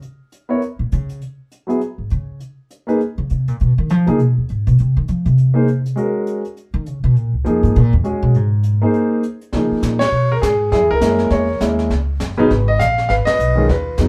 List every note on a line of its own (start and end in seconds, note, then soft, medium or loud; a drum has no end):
0.02 closed hi-hat soft
0.32 closed hi-hat medium
0.49 0.60 B3 medium
0.49 0.60 E4 soft
0.49 0.60 A#4 soft
0.49 0.61 C#5 medium
0.62 closed hi-hat soft
0.79 0.91 A#2 medium
0.92 1.19 C#3 medium
0.92 closed hi-hat medium
1.09 closed hi-hat soft
1.21 closed hi-hat soft
1.52 closed hi-hat medium
1.67 1.78 F#3 medium
1.67 1.79 B3 medium
1.67 1.79 E4 medium
1.67 1.79 G#4 medium
1.67 closed hi-hat soft
1.81 closed hi-hat soft
1.98 2.10 G#2 soft
2.10 2.38 C#3 medium
2.10 closed hi-hat soft
2.40 closed hi-hat soft
2.71 closed hi-hat medium
2.87 2.98 A#3 medium
2.87 2.98 D#4 medium
2.87 2.98 G#4 medium
2.87 2.98 B4 medium
2.87 closed hi-hat soft
3.01 closed hi-hat soft
3.18 3.29 C#3 medium
3.30 3.48 C3 medium
3.30 closed hi-hat soft
3.48 3.59 A#2 medium
3.48 closed hi-hat soft
3.60 3.77 B2 medium
3.60 closed hi-hat medium
3.78 3.90 D#3 loud
3.89 4.07 F3 loud
3.89 closed hi-hat medium
4.06 4.20 C#3 medium
4.06 4.17 F3 medium
4.06 4.17 A#3 medium
4.06 4.17 D#4 medium
4.06 4.18 G#4 medium
4.06 closed hi-hat soft
4.19 4.36 B2 medium
4.19 closed hi-hat soft
4.38 4.48 D#2 soft
4.49 4.66 G#2 medium
4.49 closed hi-hat soft
4.67 4.78 B2 loud
4.67 closed hi-hat soft
4.78 4.96 C3 medium
4.78 closed hi-hat soft
4.97 5.08 D#3 medium
5.08 5.25 F3 medium
5.08 closed hi-hat medium
5.26 5.93 C3 medium
5.26 closed hi-hat soft
5.38 closed hi-hat soft
5.54 5.65 A#3 medium
5.54 5.65 D#4 medium
5.54 5.66 G#4 medium
5.54 5.66 C5 medium
5.68 closed hi-hat soft
5.86 closed hi-hat medium
5.96 6.40 G#3 medium
5.96 6.41 C#4 soft
5.96 6.41 F#4 medium
5.96 6.41 A#4 medium
5.96 closed hi-hat soft
6.27 closed hi-hat medium
6.45 closed hi-hat soft
6.57 closed hi-hat soft
6.74 6.87 D#3 loud
6.86 7.03 C#3 medium
6.86 closed hi-hat medium
7.04 7.17 B2 loud
7.16 7.33 A#2 medium
7.16 closed hi-hat soft
7.33 7.45 C#2 soft
7.44 7.62 F2 medium
7.44 7.75 F3 medium
7.44 7.75 A#3 medium
7.44 7.75 D#4 medium
7.44 7.76 G#4 medium
7.44 closed hi-hat medium
7.63 7.75 G#2 medium
7.63 closed hi-hat medium
7.75 7.92 A#2 loud
7.75 closed hi-hat soft
7.93 8.00 E2 medium
8.04 8.34 G#3 medium
8.04 8.34 C#4 medium
8.04 8.35 F#4 soft
8.04 8.35 G#4 medium
8.04 closed hi-hat medium
8.23 8.36 B2 loud
8.34 8.82 G#2 medium
8.34 closed hi-hat soft
8.63 closed hi-hat medium
8.82 9.21 A#3 medium
8.82 9.21 D#4 medium
8.82 9.21 G#4 medium
8.82 9.22 C5 medium
8.94 closed hi-hat soft
9.23 closed hi-hat medium
9.41 closed hi-hat medium
9.53 9.70 C#3 medium
9.53 9.97 F3 medium
9.53 9.97 A#3 medium
9.53 9.98 D#4 medium
9.53 9.98 G#4 medium
9.53 brush sweep medium
9.53 kick soft
9.53 snare soft
9.71 muted upright bass stroke soft
9.82 10.11 A#2 medium
9.82 kick soft
9.82 snare medium
9.82 hi-hat pedal medium
9.99 10.30 C#5 loud
9.99 snare medium
9.99 ride medium
10.12 10.41 B2 medium
10.12 brush sweep soft
10.32 10.37 A#4 loud
10.42 10.71 G#2 medium
10.42 10.69 G#4 medium
10.42 kick soft
10.42 snare medium
10.42 hi-hat pedal medium
10.72 10.81 F#2 medium
10.72 10.91 E4 medium
10.72 10.90 G#4 medium
10.72 brush sweep medium
10.72 kick soft
10.72 snare soft
10.81 10.90 E2 soft
10.91 11.00 C#2 medium
10.91 11.01 E4 medium
10.91 11.29 A#4 loud
11.00 11.30 F#2 medium
11.00 11.45 G#3 medium
11.00 11.45 A#3 medium
11.00 11.45 C#4 medium
11.00 11.46 E4 medium
11.00 kick soft
11.00 snare medium
11.00 hi-hat pedal medium
11.19 snare soft
11.30 11.60 E2 medium
11.30 11.87 A#4 medium
11.30 11.59 C#5 medium
11.30 brush sweep soft
11.30 kick soft
11.30 snare soft
11.60 11.89 D#2 medium
11.60 11.90 G#3 medium
11.60 11.90 A#3 medium
11.60 11.91 C#4 medium
11.60 11.91 E4 medium
11.60 kick soft
11.60 snare medium
11.60 hi-hat pedal medium
11.79 snare soft
11.90 12.19 C#2 medium
11.90 brush sweep soft
11.90 kick soft
11.90 snare soft
12.20 12.49 F#1 medium
12.20 kick soft
12.20 snare medium
12.20 hi-hat pedal medium
12.37 12.48 C#3 medium
12.37 12.49 F#3 medium
12.37 12.49 B3 medium
12.37 12.49 D#4 medium
12.37 12.68 B4 medium
12.50 12.79 G#1 medium
12.50 brush sweep soft
12.50 kick soft
12.50 snare soft
12.68 12.79 D#5 loud
12.79 13.09 A#1 medium
12.79 13.07 F5 loud
12.79 kick soft
12.79 snare medium
12.79 hi-hat pedal medium
12.98 snare soft
13.09 13.26 G#1 medium
13.09 13.25 B4 medium
13.09 13.14 F5 loud
13.09 brush sweep soft
13.09 kick soft
13.09 snare soft
13.25 13.69 B4 medium
13.25 13.65 D#5 loud
13.25 muted upright bass stroke soft
13.25 snare medium
13.25 ride medium
13.39 13.68 B1 medium
13.39 hi-hat pedal medium
13.55 13.67 D#3 medium
13.55 13.67 G#3 medium
13.55 13.68 C#4 medium
13.55 13.68 F4 medium
13.69 13.97 D#2 medium
13.69 14.08 F4 medium
13.69 13.97 B4 medium
13.69 brush sweep soft
13.69 kick soft
13.69 snare soft
13.98 14.08 F2 medium
13.98 14.08 C#3 soft
13.98 14.08 F#3 soft
13.98 14.08 B3 soft
13.98 14.08 D#4 medium
13.98 kick soft
13.98 snare medium
13.98 hi-hat pedal soft